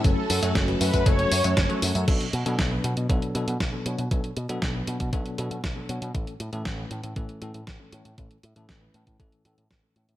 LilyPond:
<<
  \new Staff \with { instrumentName = "Analog polysynth" } { \time 4/4 \key b \minor \tempo 4 = 118 a'4 r8 b'8 cis''4. r8 | r1 | r1 | r1 |
r1 | }
  \new Staff \with { instrumentName = "String machine" } { \time 4/4 \key b \minor <cis' fis' a'>1 | r1 | r1 | r1 |
r1 | }
  \new Staff \with { instrumentName = "Tine electric piano" } { \time 4/4 \key b \minor <fis a cis' a'>16 r8 <fis a cis' a'>8 <fis a cis' b'>8. <fis a cis' a'>8 r16 <fis a cis' cis''>8 <fis a cis' a'>8. | <b, fis b d' a'>16 r8 <b, fis b d' a'>8 <b, fis b d' b'>8. <b, fis b d' a'>8 <b, fis b d' a'>16 r8 <b, fis b d' a'>16 <b, fis b d' cis''>16 r16 | <b, fis b d' a'>16 r8 <b, fis b d' a'>8 <b, fis b d' b'>8. <b, fis b d' a'>8 <b, fis b d' a'>16 r8 <b, fis b d' a'>16 <fis b d' cis''>16 r16 | <a, e a cis' a'>16 r8 <a, e a cis' a'>8 <a, e a cis' b'>8. <a, e a cis' a'>8 <a, e a cis' a'>16 r8 <a, e a cis' a'>16 <a, e a cis' cis''>16 r16 |
<a, e a cis' a'>16 r8 <a, e a cis' a'>8 <a, e a cis' b'>8. <a, e a cis' a'>8 <a, e a cis' a'>16 r8 <a, e a cis' a'>16 <a, e a cis' cis''>16 r16 | }
  \new Staff \with { instrumentName = "Picked electric bass" } { \clef bass \time 4/4 \key b \minor fis,,16 r16 fis,16 fis,16 fis,,16 r16 fis,16 fis,16 fis,,16 r16 fis,16 fis,16 fis,,16 r16 fis,16 fis,16 | b,,16 r16 b,16 b,16 b,,16 r16 b,16 b,16 b,,16 r16 b,16 b,16 b,,16 r16 b,16 b,16 | b,,16 r16 b,16 b,16 b,,16 r16 b,16 b,16 b,,16 r16 b,16 b,16 b,,16 r16 b,16 b,16 | a,,16 r16 a,16 a,16 a,,16 r16 a,16 a,16 a,,16 r16 a,16 a,16 a,,16 r16 a,16 a,16 |
a,,16 r16 a,16 a,16 r8 a,16 a,16 a,,16 r16 a,16 a,16 a,,16 r16 a,16 a,16 | }
  \new DrumStaff \with { instrumentName = "Drums" } \drummode { \time 4/4 <hh bd tamb>8 <hho tamb>16 <hh tamb>16 <hh bd sn tamb>16 hh16 <hho tamb>16 <hh bd tamb>16 <hh bd tamb>16 hh16 <hho tamb>16 <hh tamb>16 <hh bd sn tamb>16 hh16 <hho tamb>16 <hh tamb>16 | <cymc hh bd>16 hh16 hh16 hh16 <hh bd sn>8 hh16 hh16 <hh bd>16 hh16 hh16 hh16 <hh bd sn>8 hh16 hh16 | <hh bd>16 hh16 hh16 hh16 <hh bd sn>8 hh16 <hh bd>16 <hh bd>16 hh16 hh16 hh16 <hh bd sn>8 hh16 hh16 | <hh bd>16 hh16 hh16 hh16 <hh bd sn>8 hh16 hh16 <hh bd>16 hh16 hh16 hh16 <hh bd sn>8 hh16 hh16 |
<hh bd>16 hh16 hh16 hh16 <hh bd sn>8 hh16 <hh bd>16 <hh bd>16 hh16 hh16 hh16 <hh bd sn>8 hh16 hh16 | }
>>